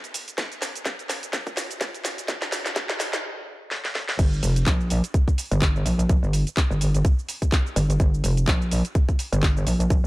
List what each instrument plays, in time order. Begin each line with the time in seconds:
0.04 closed hi-hat, shaker
0.14 open hi-hat, shaker
0.28 closed hi-hat, shaker
0.38 kick, snare, closed hi-hat, shaker
0.52 closed hi-hat, shaker
0.62 snare, open hi-hat, shaker
0.75 closed hi-hat, shaker
0.86 kick, snare, closed hi-hat, shaker
0.99 closed hi-hat, shaker
1.09 snare, open hi-hat, shaker
1.23 closed hi-hat, shaker
1.33 kick, snare, closed hi-hat, shaker
1.47 kick, closed hi-hat, shaker
1.57 snare, open hi-hat, shaker
1.71 closed hi-hat, shaker
1.81 kick, snare, closed hi-hat, shaker
1.94 closed hi-hat, shaker
2.05 snare, open hi-hat, shaker
2.18 closed hi-hat, shaker
2.28 kick, snare, closed hi-hat, shaker
2.42 snare, closed hi-hat, shaker
2.52 snare, open hi-hat, shaker
2.66 snare, closed hi-hat, shaker
2.76 kick, snare, closed hi-hat, shaker
2.89 snare, closed hi-hat, shaker
3.00 snare, open hi-hat, shaker
3.13 snare, closed hi-hat, shaker
3.71 snare
3.85 snare
3.95 snare
4.09 snare
4.19 wobble bass G1, kick, closed hi-hat, crash, shaker
4.33 shaker
4.43 wobble bass F1, open hi-hat, shaker
4.56 closed hi-hat, shaker
4.67 wobble bass A#1, kick, clap, closed hi-hat, shaker
4.81 shaker
4.90 open hi-hat, shaker
5.04 closed hi-hat, shaker
5.14 kick, closed hi-hat, shaker
5.28 kick, shaker
5.38 open hi-hat, shaker
5.51 wobble bass G1, closed hi-hat, shaker
5.62 kick, clap, closed hi-hat, shaker
5.76 shaker
5.86 wobble bass A#1, open hi-hat, shaker
5.99 closed hi-hat, shaker
6.09 kick, closed hi-hat, shaker
6.23 wobble bass G1, shaker
6.33 open hi-hat, shaker
6.47 closed hi-hat, shaker
6.57 kick, clap, closed hi-hat, shaker
6.71 wobble bass G1, shaker
6.81 open hi-hat, shaker
6.94 closed hi-hat, shaker
7.05 kick, closed hi-hat, shaker
7.19 shaker
7.29 open hi-hat, shaker
7.42 kick, closed hi-hat, shaker
7.52 kick, clap, closed hi-hat, shaker
7.66 shaker
7.76 wobble bass G1, open hi-hat, shaker
7.90 closed hi-hat, shaker
8.00 wobble bass G1, kick, closed hi-hat, shaker
8.14 shaker
8.24 wobble bass F1, open hi-hat, shaker
8.37 closed hi-hat, shaker
8.48 wobble bass A#1, kick, clap, closed hi-hat, shaker
8.62 shaker
8.71 open hi-hat, shaker
8.85 closed hi-hat, shaker
8.95 kick, closed hi-hat, shaker
9.09 kick, shaker
9.19 open hi-hat, shaker
9.33 wobble bass G1, closed hi-hat, shaker
9.43 kick, clap, closed hi-hat, shaker
9.57 shaker
9.67 wobble bass A#1, open hi-hat, shaker
9.80 closed hi-hat, shaker
9.90 kick, closed hi-hat, shaker